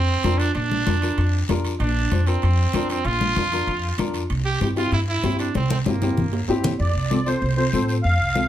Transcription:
Already playing: upright bass F2, trumpet C4
0.23 upright bass F2, upright piano D4 F4 A#4, high conga, high timbale, short guiro
0.38 trumpet D4, high timbale, short guiro
0.55 upright bass A#1, trumpet D4, high timbale, long guiro
0.71 high conga
0.86 upright bass F2, upright piano D4 F4 A#4, high conga, high timbale, short guiro
1.02 upright piano D4 F4 A#4, high timbale, short guiro
1.17 upright bass F2, high timbale, long guiro
1.49 upright bass F2, upright piano D4 F4 A#4, high conga, high timbale, low timbale, short guiro
1.65 high timbale, short guiro
1.80 upright bass A#1, trumpet D4, high timbale, long guiro
2.11 upright bass F2, upright piano D4 F4 C5, high conga, high timbale, short guiro
2.27 trumpet C4, upright piano D4 F4 A#4, high timbale, short guiro
2.42 upright bass F2, high timbale, long guiro
2.73 upright bass F2, upright piano D4 F4 A#4, high conga, high timbale, short guiro
2.89 trumpet C4, high timbale, short guiro
3.05 upright bass A#1, trumpet F4, high timbale, long guiro
3.21 high conga
3.36 upright bass F2, upright piano D4 F4 A#4, high conga, high timbale, short guiro
3.52 upright piano D4 F4 A#4, high timbale, short guiro
3.67 upright bass F2, high timbale, long guiro
3.98 upright bass F2, upright piano D4 F4 A#4, high conga, high timbale, short guiro
4.14 high timbale, short guiro
4.30 upright bass C2, high timbale, long guiro
4.45 trumpet G4
4.60 upright bass G2, upright piano C4 E4 G4, trumpet G4, high conga, high timbale, short guiro
4.76 upright piano C4 E4 G4, trumpet F4, high timbale, short guiro
4.91 upright bass G2, trumpet E4, high timbale, long guiro
5.09 trumpet E4
5.23 upright bass G2, upright piano C4 E4 G4, high conga, high timbale, low timbale, short guiro
5.39 trumpet D4, high timbale, short guiro
5.54 upright bass C2, trumpet C4, high conga, high timbale, long guiro
5.70 trumpet C4, high conga
5.86 upright bass G2, trumpet A#3, upright piano C4 E4 G4, high conga, high timbale, short guiro
6.02 upright piano C4 E4 G4, high conga, high timbale, short guiro
6.17 upright bass G2, low conga, long guiro
6.33 low timbale
6.48 upright bass G2, upright piano C4 E4 G4, low timbale, short guiro
6.64 low conga, low timbale, short guiro
6.79 upright bass F2, accordion D5, long guiro
6.95 upright bass C2
7.10 upright piano C4 F4 A4, high conga, short guiro
7.26 upright piano C4 F4 A4, accordion C5, short guiro
7.41 upright bass C2, long guiro
7.56 upright piano C4 F4 A4, accordion C5
7.73 upright bass A2, upright piano C4 F4 A4, high conga, short guiro
7.87 accordion C5, short guiro
8.03 upright bass F2, accordion F5, long guiro
8.20 upright bass C2
8.35 upright piano C4 F4 A4, high conga, short guiro

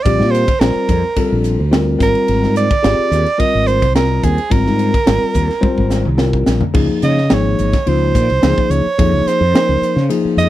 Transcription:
0.03 fretless electric bass A#1, tine electric piano G3 C4 F4 G4, soprano saxophone D5, kick, ride
0.19 fretless electric bass A#2, snare
0.31 soprano saxophone C5, hi-hat pedal, ride
0.48 kick, ride
0.59 fretless electric bass A#1, tine electric piano G3 C4 F4 C5, soprano saxophone A#4, snare, ride
0.75 muted fretless electric bass stroke
0.89 fretless electric bass F2, kick, hi-hat pedal, ride
1.16 tine electric piano G3 C4 F4 A4, muted fretless electric bass stroke, kick, ride
1.32 fretless electric bass A#1
1.44 hi-hat pedal, ride
1.59 fretless electric bass D2
1.71 tine electric piano G3 C4 F4 A#4, snare, ride
1.99 fretless electric bass G#1, tine electric piano G3 C4 F4 A#4, kick, snare, hi-hat pedal, ride
2.03 soprano saxophone A#4
2.15 ride
2.28 fretless electric bass G#1, ride
2.43 fretless electric bass G#2, snare
2.56 soprano saxophone D5, hi-hat pedal, ride
2.70 kick, ride
2.83 fretless electric bass G#1, tine electric piano C4 F4 G4 G#4, snare, ride
3.11 fretless electric bass D#2, snare, hi-hat pedal, ride
3.26 ride
3.38 tine electric piano G3 C4 F4 A#4, soprano saxophone D#5, muted fretless electric bass stroke, kick, ride
3.55 fretless electric bass G#1
3.67 soprano saxophone C5, hi-hat pedal, ride
3.82 fretless electric bass C2, kick, ride
3.95 tine electric piano G3 C4 F4 A#4, soprano saxophone A#4, snare, ride
4.23 fretless electric bass D#2, soprano saxophone G#4, kick, hi-hat pedal, ride
4.38 ride
4.50 fretless electric bass G#1, tine electric piano G3 C4 F4 A#4, soprano saxophone A#4, kick, ride
4.66 fretless electric bass G#2, snare
4.79 hi-hat pedal, ride
4.94 kick, ride
5.06 fretless electric bass G#1, tine electric piano G3 C4 F4 A#4, snare, ride
5.21 muted fretless electric bass stroke, snare
5.34 fretless electric bass D#2, kick, hi-hat pedal, ride
5.50 snare
5.61 tine electric piano G3 C4 F4 C5, muted fretless electric bass stroke, kick, high tom
5.78 fretless electric bass G#1, kick
5.90 snare, hi-hat pedal
6.05 fretless electric bass C2, mid tom
6.17 tine electric piano G3 C4 F4 A#4, snare
6.33 kick
6.46 fretless electric bass A#1, snare, hi-hat pedal
6.61 floor tom
6.74 fretless electric bass C#2, tine electric piano F3 A#3 D#4 G#4, kick, crash
7.02 fretless electric bass C#3, soprano saxophone D#5, snare, hi-hat pedal, ride
7.17 snare
7.30 fretless electric bass G#1, tine electric piano F3 A#3 D#4 G#4, soprano saxophone C#5, snare, ride
7.59 fretless electric bass G#1, hi-hat pedal, ride
7.73 kick, snare, ride
7.86 fretless electric bass C#2, tine electric piano F3 A#3 D#4 F4, soprano saxophone C5, ride
8.15 fretless electric bass A#2, kick, hi-hat pedal, ride
8.30 fretless electric bass C2, ride
8.42 fretless electric bass C#2, tine electric piano F3 A#3 D#4 G#4, snare, ride
8.58 kick
8.70 fretless electric bass C#2, soprano saxophone C#5, hi-hat pedal, ride
8.86 muted fretless electric bass stroke
8.98 fretless electric bass F2, tine electric piano F3 A#3 D#4 G#4, kick, ride
9.12 fretless electric bass C#2
9.28 soprano saxophone C5, snare, hi-hat pedal, ride
9.41 fretless electric bass F2
9.54 tine electric piano F3 A#3 D#4 A#4, snare, ride
9.69 fretless electric bass C#2
9.83 hi-hat pedal, ride
9.96 fretless electric bass C#3, snare
10.10 tine electric piano F3 A#3 D#4 G#4, ride
10.25 muted fretless electric bass stroke
10.37 fretless electric bass F2, soprano saxophone D#5, hi-hat pedal, ride

